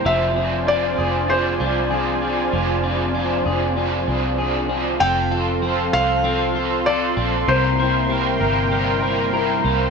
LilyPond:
<<
  \new Staff \with { instrumentName = "Felt piano" } { \time 4/4 \key f \major \tempo 4 = 97 e''4 d''4 c''2~ | c''2. r4 | g''4. f''4. d''4 | c''4 r2. | }
  \new Staff \with { instrumentName = "Analog synth pad" } { \time 4/4 \key f \major << { aes''1~ | aes''1 | c'''1~ | c'''1 | } \\ { <f' c'' d''>1~ | <f' c'' d''>1 | <a' c'' f''>1 | <bes' c'' g''>1 | } >> }
  \new Staff \with { instrumentName = "Clean electric guitar" } { \time 4/4 \key f \major f8 c'8 d'8 aes'8 c'8 d'8 aes'8 c'8 | f8 c'8 d'8 aes'8 c'8 d'8 aes'8 c'8 | <f a'>8 f'8 c'8 a'8 c'8 f'8 a'8 c'8 | <c bes'>8 e'8 bes8 bes'8 g8 e'8 bes'8 bes8 | }
  \new Staff \with { instrumentName = "Overdriven electric guitar" } { \time 4/4 \key f \major <f c' d' aes'>8 <c' d' aes'>8 <f c' d' aes'>8 <c' d' aes'>8 <f c' d' aes'>8 <c' d' aes'>8 <f c' d' aes'>8 <c' d' aes'>8 | <f c' d' aes'>8 <c' d' aes'>8 <f c' d' aes'>8 <c' d' aes'>8 <f c' d' aes'>8 <c' d' aes'>8 <f c' d' aes'>8 <c' d' aes'>8 | <f c' f' a'>8 <c' f' a'>8 <f c' f' a'>8 <c' f' a'>8 <f c' f' a'>8 <c' f' a'>8 <f c' f' a'>8 <c' f' a'>8 | <c g bes e' bes'>8 <bes e' bes'>8 <g bes e' bes'>8 <bes e' bes'>8 <c g bes e' bes'>8 <bes e' bes'>8 <g bes e' bes'>8 <bes e' bes'>8 | }
  \new Staff \with { instrumentName = "Fingered electric bass" } { \clef bass \time 4/4 \key f \major f,,4. f,,4 c,4. | f,,4. f,,4 c,4. | f,,4. c,2 bes,,8 | c,4. g,,2 c,8 | }
>>